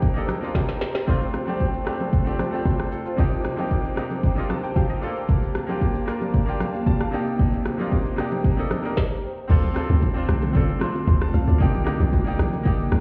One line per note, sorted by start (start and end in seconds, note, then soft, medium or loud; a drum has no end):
0.00 0.77 C2 medium
0.00 0.14 A#3 medium
0.00 0.15 D4 medium
0.00 0.17 D#4 medium
0.00 1.05 G4 medium
0.00 1.10 G4 loud
0.00 4.98 C5 medium
0.00 1.05 G5 medium
0.00 1.05 A#5 medium
0.00 kick loud
0.00 low conga medium
0.00 shaker medium
0.14 0.36 A#3 medium
0.14 0.37 D4 medium
0.14 0.37 D#4 medium
0.14 0.38 A4 medium
0.14 shaker medium
0.29 cross-stick medium
0.29 low bongo medium
0.29 shaker medium
0.40 0.94 A#3 medium
0.40 0.95 D4 medium
0.40 0.95 D#4 medium
0.40 0.96 F4 loud
0.40 high bongo medium
0.40 shaker medium
0.55 0.79 G5 medium
0.55 kick loud
0.55 snare medium
0.55 high bongo medium
0.55 low conga medium
0.55 shaker medium
0.68 snare medium
0.68 shaker medium
0.81 1.06 A#5 medium
0.81 snare medium
0.81 shaker medium
0.95 snare medium
0.95 shaker medium
1.06 1.38 A3 medium
1.06 1.39 C4 medium
1.06 1.40 D4 medium
1.06 3.16 F4 medium
1.06 1.40 F4 loud
1.06 3.16 D5 medium
1.06 3.16 A5 medium
1.06 kick loud
1.06 low conga medium
1.06 shaker medium
1.21 shaker medium
1.34 cross-stick medium
1.34 high bongo soft
1.34 shaker loud
1.46 1.78 A3 medium
1.46 1.79 C4 medium
1.46 1.79 D4 medium
1.46 1.80 G4 medium
1.46 low bongo medium
1.46 shaker soft
1.60 kick medium
1.60 high bongo medium
1.60 shaker medium
1.74 shaker soft
1.85 2.17 A3 medium
1.85 2.18 C4 medium
1.85 2.19 D4 medium
1.85 2.19 G4 medium
1.85 cross-stick loud
1.85 shaker medium
2.00 low bongo medium
2.00 shaker medium
2.13 kick loud
2.13 low conga medium
2.13 shaker medium
2.25 2.46 A3 medium
2.25 2.47 C4 medium
2.25 2.48 D4 medium
2.25 2.48 G4 medium
2.25 shaker medium
2.39 cross-stick medium
2.39 low bongo medium
2.39 shaker medium
2.51 3.05 A3 medium
2.51 3.05 C4 medium
2.51 3.06 D4 medium
2.51 2.67 G4 loud
2.51 shaker medium
2.65 2.90 C5 medium
2.65 kick loud
2.65 high bongo medium
2.65 low conga medium
2.65 shaker medium
2.79 cross-stick medium
2.79 shaker medium
2.92 3.05 A4 medium
2.92 shaker medium
3.06 3.31 F4 medium
3.06 shaker medium
3.16 3.49 C3 medium
3.16 3.49 A#3 medium
3.16 3.50 D4 medium
3.16 3.50 D#4 medium
3.16 7.09 G4 medium
3.16 3.51 G4 medium
3.16 5.01 G5 medium
3.16 5.01 A#5 medium
3.16 kick loud
3.16 low conga medium
3.16 shaker medium
3.32 shaker medium
3.44 cross-stick medium
3.44 high bongo medium
3.44 shaker medium
3.56 3.89 C3 medium
3.56 3.89 A#3 medium
3.56 3.90 D4 medium
3.56 3.90 D#4 medium
3.56 3.91 G4 loud
3.56 low bongo medium
3.56 shaker medium
3.71 kick medium
3.71 high bongo medium
3.71 shaker medium
3.84 shaker soft
3.95 4.28 C3 medium
3.95 4.28 A#3 medium
3.95 4.29 D4 medium
3.95 4.29 D#4 medium
3.95 4.30 G4 medium
3.95 cross-stick medium
3.95 shaker medium
4.10 low bongo medium
4.10 shaker medium
4.23 kick loud
4.23 low conga medium
4.23 shaker medium
4.35 4.57 C3 medium
4.35 4.57 A#3 medium
4.35 4.58 D4 medium
4.35 4.59 D#4 medium
4.35 4.59 F4 medium
4.35 shaker medium
4.50 4.63 A5 medium
4.50 cross-stick medium
4.50 low bongo medium
4.50 shaker medium
4.63 4.75 G5 medium
4.63 shaker medium
4.76 4.89 F5 medium
4.76 5.01 G5 medium
4.76 kick loud
4.76 high bongo medium
4.76 low conga medium
4.76 shaker medium
4.90 5.15 D#5 medium
4.90 shaker medium
5.00 5.08 A3 medium
5.00 7.11 A#3 medium
5.00 5.55 D4 medium
5.00 5.55 F4 medium
5.00 5.56 A4 loud
5.00 7.11 D5 medium
5.00 5.27 F5 medium
5.00 7.11 F5 medium
5.00 7.11 A5 medium
5.00 shaker medium
5.07 5.57 A#3 medium
5.16 shaker medium
5.29 kick loud
5.29 low conga medium
5.29 shaker medium
5.43 shaker medium
5.55 cross-stick medium
5.55 high bongo medium
5.55 shaker medium
5.67 5.99 A#3 medium
5.67 6.00 D4 medium
5.67 6.00 F4 medium
5.67 6.01 G4 medium
5.67 low bongo medium
5.67 shaker medium
5.81 kick medium
5.81 high bongo medium
5.81 shaker medium
5.95 shaker soft
6.06 6.38 A#3 medium
6.06 6.39 D4 medium
6.06 6.40 F4 medium
6.06 6.40 A#4 medium
6.06 cross-stick medium
6.06 shaker medium
6.21 low bongo medium
6.21 shaker medium
6.34 kick loud
6.34 low conga medium
6.34 shaker medium
6.46 6.68 A#3 medium
6.46 6.68 D4 medium
6.46 6.69 F4 medium
6.46 6.70 G4 loud
6.46 shaker medium
6.60 6.85 F5 medium
6.60 cross-stick medium
6.60 low bongo medium
6.60 shaker medium
6.75 shaker medium
6.86 7.00 A5 medium
6.86 kick loud
6.86 high bongo medium
6.86 low conga medium
6.86 shaker medium
7.00 7.25 F5 medium
7.00 cross-stick medium
7.00 shaker medium
7.11 7.65 C3 medium
7.11 7.65 A#3 medium
7.11 7.66 D4 medium
7.11 7.66 D#4 medium
7.11 8.95 G4 medium
7.11 7.67 G4 loud
7.11 8.95 C5 medium
7.11 8.95 G5 medium
7.11 8.95 A#5 medium
7.11 shaker medium
7.27 shaker medium
7.39 kick loud
7.39 low conga medium
7.39 shaker medium
7.53 shaker medium
7.65 cross-stick medium
7.65 high bongo medium
7.65 shaker medium
7.77 8.10 C3 medium
7.77 8.10 A#3 medium
7.77 8.11 D4 medium
7.77 8.11 D#4 medium
7.77 8.12 F4 medium
7.77 low bongo medium
7.77 shaker medium
7.92 kick medium
7.92 high bongo medium
7.92 shaker medium
8.05 shaker soft
8.16 8.49 C3 medium
8.16 8.49 A#3 medium
8.16 8.50 D4 medium
8.16 8.50 D#4 medium
8.16 8.51 G4 loud
8.16 cross-stick medium
8.16 shaker medium
8.31 low bongo medium
8.31 shaker medium
8.44 kick loud
8.44 low conga medium
8.44 shaker medium
8.56 8.78 C3 medium
8.56 8.79 A#3 medium
8.56 8.79 D4 medium
8.56 8.80 D#4 medium
8.56 8.80 A4 medium
8.56 shaker medium
8.71 cross-stick medium
8.71 low bongo medium
8.71 shaker medium
8.83 8.96 C3 medium
8.83 8.97 A#3 medium
8.83 8.97 D4 medium
8.83 8.98 D#4 medium
8.83 8.98 A#4 loud
8.83 shaker medium
8.97 kick loud
8.97 snare medium
9.48 9.87 D2 loud
9.48 11.58 D3 medium
9.48 11.58 A3 medium
9.48 9.70 C4 medium
9.48 11.58 C4 medium
9.48 9.71 D4 medium
9.48 11.58 F4 medium
9.48 9.71 F4 medium
9.48 9.72 A4 loud
9.48 kick loud
9.48 crash loud
9.48 low conga medium
9.48 shaker medium
9.64 low bongo medium
9.64 shaker medium
9.74 10.07 C4 medium
9.74 10.08 D4 medium
9.74 10.08 F4 medium
9.74 10.09 A4 loud
9.74 cross-stick medium
9.74 high bongo medium
9.74 shaker loud
9.90 10.26 D2 loud
9.90 low bongo medium
9.90 shaker medium
10.02 kick medium
10.02 high bongo medium
10.02 shaker medium
10.14 10.46 C4 medium
10.14 10.47 D4 medium
10.14 10.48 F4 medium
10.14 10.48 C5 loud
10.14 shaker soft
10.29 10.78 C2 medium
10.29 cross-stick loud
10.29 shaker medium
10.42 low bongo medium
10.42 shaker medium
10.53 10.75 C4 medium
10.53 10.76 D4 medium
10.53 10.77 F4 medium
10.53 10.77 A4 loud
10.53 kick loud
10.53 low conga medium
10.53 shaker medium
10.69 shaker medium
10.79 11.12 C4 medium
10.79 11.13 D4 medium
10.79 11.13 F4 medium
10.79 11.14 C5 medium
10.79 cross-stick loud
10.79 low bongo medium
10.79 shaker loud
10.95 high bongo medium
10.95 shaker medium
11.07 11.32 D2 loud
11.07 11.21 C6 medium
11.07 kick loud
11.07 high bongo medium
11.07 low conga medium
11.07 shaker medium
11.21 11.33 A5 medium
11.21 cross-stick medium
11.21 shaker medium
11.34 11.47 C2 medium
11.34 11.47 F5 medium
11.34 shaker medium
11.47 11.62 D2 loud
11.47 11.73 D5 medium
11.47 shaker medium
11.58 11.98 C2 loud
11.58 13.01 C3 medium
11.58 13.01 D#3 medium
11.58 13.01 G3 medium
11.58 11.81 A#3 medium
11.58 13.01 A#3 medium
11.58 11.81 D4 medium
11.58 11.82 D#4 medium
11.58 11.82 G4 loud
11.58 kick loud
11.58 low conga medium
11.58 shaker medium
11.74 low bongo medium
11.74 shaker medium
11.84 12.17 A#3 medium
11.84 12.18 D4 medium
11.84 12.19 D#4 medium
11.84 12.19 G4 loud
11.84 cross-stick medium
11.84 high bongo medium
11.84 shaker loud
12.00 12.37 C2 medium
12.00 low bongo medium
12.00 shaker medium
12.13 kick medium
12.13 high bongo medium
12.13 shaker medium
12.25 12.57 A#3 medium
12.25 12.58 D4 medium
12.25 12.58 D#4 medium
12.25 12.59 G4 loud
12.25 shaker soft
12.39 12.88 A#1 medium
12.39 cross-stick loud
12.39 shaker medium
12.52 low bongo medium
12.52 shaker medium
12.63 12.86 A#3 medium
12.63 12.86 D4 medium
12.63 12.87 D#4 medium
12.63 12.88 G4 loud
12.63 kick loud
12.63 low conga medium
12.63 shaker medium
12.79 shaker medium
12.92 13.01 C2 loud
12.92 13.01 A#4 medium
12.92 cross-stick loud
12.92 low bongo medium
12.92 shaker medium